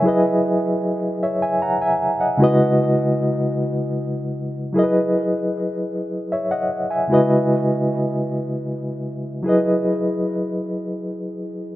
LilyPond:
\new Staff \with { instrumentName = "Reed electric piano" } { \time 6/8 \key fis \dorian \tempo 4. = 51 << { <e'' gis''>16 r4 r16 <cis'' e''>16 <e'' gis''>16 <fis'' ais''>16 <e'' gis''>8 <dis'' fis''>16~ | <dis'' fis''>16 r2 r8. | r2 <cis'' e''>16 <dis'' fis''>8 <e'' gis''>16~ | <e'' gis''>16 r2 r8. |
r2. | } \\ { <fis e' gis' b' dis''>2. | <cis gis e' fis' b' dis''>2. | <fis e' gis' ais' b' dis''>2. | <cis gis e' fis' b' dis''>2. |
<fis e' gis' b' dis''>2. | } >> }